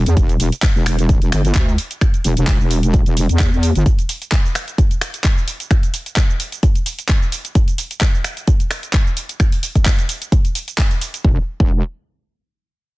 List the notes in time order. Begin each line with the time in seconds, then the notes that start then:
0.06 E2, closed hi-hat, cabasa
0.17 E1, kick, closed hi-hat, cabasa
0.29 closed hi-hat, cabasa
0.40 E1, open hi-hat, cabasa
0.52 closed hi-hat, cabasa
0.62 kick, clap, closed hi-hat, cabasa
0.75 E1, cabasa
0.86 finger snap, open hi-hat, cabasa
0.99 closed hi-hat, cabasa
1.09 kick, closed hi-hat, cabasa
1.22 E1, closed hi-hat, cabasa
1.32 G1, finger snap, open hi-hat, cabasa
1.45 closed hi-hat, cabasa
1.55 D2, kick, clap, closed hi-hat, cabasa
1.68 cabasa
1.78 open hi-hat, cabasa
1.91 closed hi-hat, cabasa
2.01 finger snap, kick, closed hi-hat, cabasa
2.14 closed hi-hat, cabasa
2.24 E1, open hi-hat, cabasa
2.37 E1, closed hi-hat, cabasa
2.47 kick, clap, closed hi-hat, cabasa
2.60 E1, cabasa
2.71 open hi-hat, cabasa
2.83 closed hi-hat, cabasa
2.94 kick, closed hi-hat, cabasa
3.06 E1, closed hi-hat, cabasa
3.17 open hi-hat, cabasa
3.29 E2, closed hi-hat, cabasa
3.39 kick, clap, closed hi-hat, cabasa
3.53 cabasa
3.63 open hi-hat, cabasa
3.75 G1, closed hi-hat, cabasa
3.86 kick, closed hi-hat, cabasa
3.99 closed hi-hat, cabasa
4.09 open hi-hat, cabasa
4.22 closed hi-hat, cabasa
4.32 kick, clap, closed hi-hat, cabasa
4.45 cabasa
4.55 finger snap, open hi-hat, cabasa
4.68 closed hi-hat, cabasa
4.78 kick, closed hi-hat, cabasa
4.91 closed hi-hat, cabasa
5.01 finger snap, open hi-hat, cabasa
5.14 closed hi-hat, cabasa
5.24 kick, clap, closed hi-hat, cabasa
5.38 cabasa
5.48 open hi-hat, cabasa
5.60 closed hi-hat, cabasa
5.71 finger snap, kick, closed hi-hat, cabasa
5.83 closed hi-hat, cabasa
5.94 open hi-hat, cabasa
6.06 closed hi-hat, cabasa
6.16 kick, clap, closed hi-hat, cabasa
6.30 cabasa
6.40 open hi-hat, cabasa
6.52 closed hi-hat, cabasa
6.63 kick, closed hi-hat, cabasa
6.75 closed hi-hat, cabasa
6.86 open hi-hat, cabasa
6.99 closed hi-hat, cabasa
7.09 kick, clap, closed hi-hat, cabasa
7.22 cabasa
7.32 open hi-hat, cabasa
7.45 closed hi-hat, cabasa
7.55 kick, closed hi-hat, cabasa
7.68 closed hi-hat, cabasa
7.78 open hi-hat, cabasa
7.91 closed hi-hat, cabasa
8.01 kick, clap, closed hi-hat, cabasa
8.15 cabasa
8.24 finger snap, open hi-hat, cabasa
8.37 closed hi-hat, cabasa
8.47 kick, closed hi-hat, cabasa
8.60 closed hi-hat, cabasa
8.71 finger snap, open hi-hat, cabasa
8.83 closed hi-hat, cabasa
8.93 kick, clap, closed hi-hat, cabasa
9.07 cabasa
9.17 open hi-hat, cabasa
9.29 closed hi-hat, cabasa
9.40 finger snap, kick, closed hi-hat, cabasa
9.52 open hi-hat, cabasa
9.63 open hi-hat, cabasa
9.75 kick, closed hi-hat, cabasa
9.86 kick, clap, closed hi-hat, cabasa
9.99 closed hi-hat, cabasa
10.09 open hi-hat, cabasa
10.22 closed hi-hat, cabasa
10.32 kick, closed hi-hat, cabasa
10.45 closed hi-hat, cabasa
10.55 open hi-hat, cabasa
10.68 closed hi-hat, cabasa
10.78 kick, clap, closed hi-hat, cabasa
10.91 closed hi-hat, cabasa
11.02 open hi-hat, cabasa
11.14 closed hi-hat, cabasa
11.25 E1, kick
11.60 E1, kick